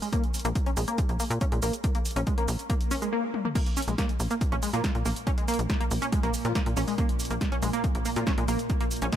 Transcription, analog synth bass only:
0.45 A#1
0.77 A#1
1.09 A#1
1.30 A#2
1.52 A#2
1.62 A#1
2.16 A#1
2.48 A#1
3.88 A#1
4.20 A#1
4.52 A#1
4.74 A#2
4.95 A#2
5.06 A#1
5.59 A#1
5.91 A#1
6.23 A#1
6.45 A#2
6.66 A#2
6.77 A#1
7.31 A#1
7.63 A#1
7.95 A#1
8.16 A#2
8.38 A#2
8.48 A#1
9.02 A#1

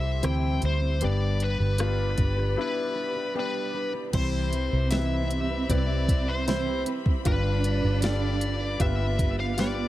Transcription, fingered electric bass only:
Already playing: C2
0.23 D2
0.63 D2
1.02 G1
1.60 G1
2.18 G1
4.13 C2
4.73 C2
5.69 C2
7.25 G1
7.84 G1
8.80 G1

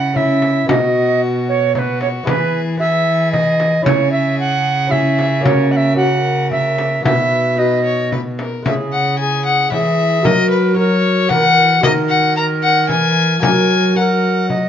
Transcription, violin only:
Already playing: E4
0.16 E4
0.69 F#4
1.75 F#4
2.27 G#4
2.80 G#4
3.86 G#4
4.92 G#4
5.45 A#4
5.97 A#4
7.05 B4
7.59 B4
7.85 C#5
8.12 B4
8.39 A#4
8.65 E5
8.92 F#5
9.19 G#5
9.46 F#5
9.72 E5
10.26 D#5
10.51 B4
10.77 C#5
11.29 F#5
11.83 D#5
12.09 F#5
12.37 A#5
12.63 F#5
12.90 G#5
13.42 G#5
13.96 F#5

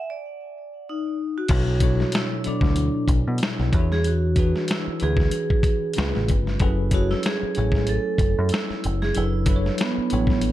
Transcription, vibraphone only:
0.10 D5
0.89 D#4
1.38 F#4
2.16 E4
2.48 D4
3.44 E4
3.92 G#4
4.07 F#4
4.71 E4
5.03 G#4
6.95 F#4
7.11 E4
7.26 G#4
7.89 A4
8.53 E4
9.02 G#4
9.17 E4
9.81 B3

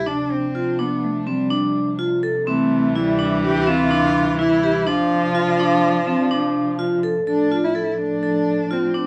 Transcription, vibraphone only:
0.06 D4
0.55 F4
0.79 D4
1.27 C4
1.50 D4
1.99 F4
2.23 A4
2.47 C4
2.96 E4
3.19 D4
3.67 C4
3.91 D4
4.39 E4
4.63 G4
4.87 D4
5.35 F4
5.60 D4
6.07 C4
6.31 D4
6.79 F4
7.03 A4
7.27 A4
7.52 F4
7.75 A4
8.23 A4
8.71 F4
8.94 D4

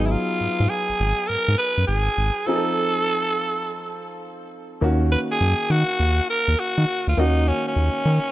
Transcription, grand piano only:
Already playing: F#3 B3 D#4 G#4
2.46 F3 C4 D#4 G#4
2.55 A4
4.81 D#3 A#3 C#4 F#4
7.17 D#3 A#3 C#4 F#4

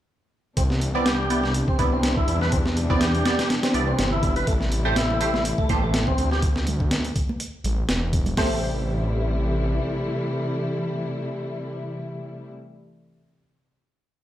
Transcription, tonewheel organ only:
0.57 C4
0.95 C4
1.06 G4
1.68 C4
1.93 C4
2.17 E4
2.42 B4
2.53 C4
2.90 C4
3.01 G4
3.63 C4
3.88 C4
4.12 E4
4.36 B4
4.47 A3
4.85 A3
4.96 E4
5.58 A3
5.83 A3
6.07 C4
6.32 G4
8.38 A3

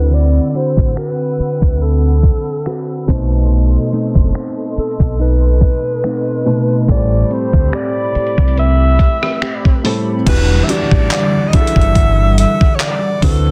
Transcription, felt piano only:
Already playing: D3 C4 E4 F#4 A4
3.08 B2 A3 D#4 C5
6.45 B2 A3 D#4 B4
6.88 A2 G3 C4 A#4
6.96 C5
9.84 A2 G3 C4 A4
10.26 E3 D4 F#4 G4
10.68 E3 D4 F#4 G4
11.53 E3 D4 F#4 G#4
11.61 A4
13.22 D3 C4 E4 F#4 B4

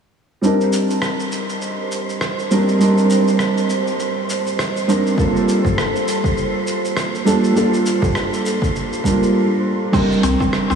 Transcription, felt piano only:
0.41 G3 C4 D4 D#4 A#4
2.51 G3 C4 D4 D#4 A#4
2.79 G3 C4 D4 D#4
2.83 A#4
4.88 G3 C4 D4 D#4 A#4
5.16 G3 A#3 D4 F4 A4
7.25 G3 A#3 D4 F4 A4
7.53 G3 A#3 D4 F4 A4
9.03 G3 A#3 D4 F4 A#4
9.92 G3 C4 D4 D#4 A#4

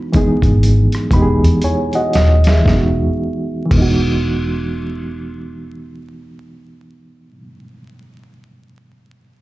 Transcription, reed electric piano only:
Already playing: E3 G#3 B3 D4 D#4 F#4 B4
0.12 E3 G#3 B3 D#4
0.17 G#4
1.12 E3 G#3 B3 D#4 B5
1.16 G4
1.22 G#4
1.64 E4 C#5 G#5
1.95 F#4 D#5 F#5
2.15 D#5
2.48 G#4 E5
2.59 E3
2.64 G#3
2.68 B3 D#4
2.76 F#4
3.65 E3 G#3
3.74 B3
3.78 D#4
3.82 F#4

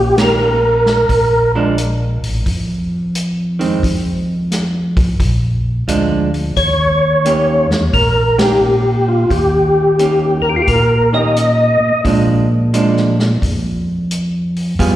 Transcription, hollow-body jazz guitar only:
Already playing: A#3 C#4 G4
0.18 D#3 A#3 C#4 G4
1.55 F3 G#3 D4
3.59 D#3 G#3 C4
5.88 F3 G#3 D4
7.25 D#3 A#3 C#4 G4
8.38 D#3 A#3 C#4 G4
9.99 D#3 A#3 C#4 G4
11.13 D#3 A#3 C#4 G4
12.04 F3 G#3 D4
12.74 F3 G#3 D4
14.79 G3 B3 F4 G#4

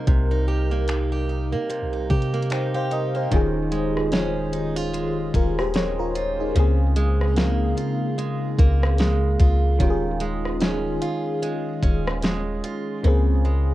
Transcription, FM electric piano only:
Already playing: C3 G3 D#4 A#4
2.52 C5 G5
2.75 C5 F5
2.92 A#4 D#5
3.16 G4 C5
3.31 D#3 C#4 F4
3.35 G#4
5.36 F4 A#4
5.59 G4 C5
5.76 G#4 C#5
5.99 F4 A#4
6.40 D#4 G#4
6.55 C#3 A#3 C4
6.59 G#4
9.79 D#3 C#4 F4
9.83 G4
9.90 G#4
13.03 C#3 A#3 C4
13.08 G#4

